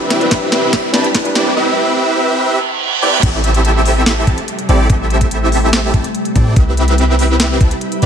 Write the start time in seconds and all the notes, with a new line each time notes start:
Already playing: C3 G3 C4 D4 E4 G4 B4 E5, riser
0.10 snare, closed hi-hat
0.20 D4 E4 G4 B4, closed hi-hat
0.31 kick, snare, closed hi-hat
0.51 D4 E4 G4 B4, snare, closed hi-hat
0.73 kick, snare, closed hi-hat
0.93 C4 D4 E4 G4 B4 A5, snare, closed hi-hat
1.04 closed hi-hat
1.15 kick, snare, closed hi-hat
1.24 D4 E4 G4 B4, closed hi-hat
1.35 C4 E4 G4 B4 D5, snare, closed hi-hat
1.56 C4 E4 G4 B4 E5
2.40 reverse cymbal
3.02 C4 E4 G4 B4 D5
3.23 A1 C3 G3 A3 C4 E4 G4 A4 E5, kick, closed hi-hat, crash, downlifter
3.44 closed hi-hat
3.54 closed hi-hat
3.65 closed hi-hat
3.85 open hi-hat
4.06 snare, closed hi-hat
4.27 A1 C4 E4 G4 A4 A5, kick, closed hi-hat
4.38 closed hi-hat
4.48 closed hi-hat
4.59 closed hi-hat
4.69 A1 C4 E4 G4 A4 D5, closed hi-hat
4.90 A1 C4 E4 G4 A4 E5, kick, closed hi-hat
5.10 closed hi-hat
5.21 kick, closed hi-hat
5.31 closed hi-hat
5.52 open hi-hat
5.73 snare, closed hi-hat
5.94 A1 C4 E4 G4 A4 A5, kick, closed hi-hat
6.04 closed hi-hat
6.15 closed hi-hat
6.25 closed hi-hat
6.36 A2 C4 E4 G4 A4 D5, kick, closed hi-hat
6.56 C2 G3 C4 E4 G4 B4 E5, kick, closed hi-hat
6.77 closed hi-hat
6.88 closed hi-hat
6.98 closed hi-hat
7.19 open hi-hat
7.40 snare, closed hi-hat
7.61 C2 C4 E4 G4 B4 A5, kick, closed hi-hat
7.71 closed hi-hat
7.81 closed hi-hat
7.92 closed hi-hat
8.02 C2 C4 E4 G4 B4 D5, closed hi-hat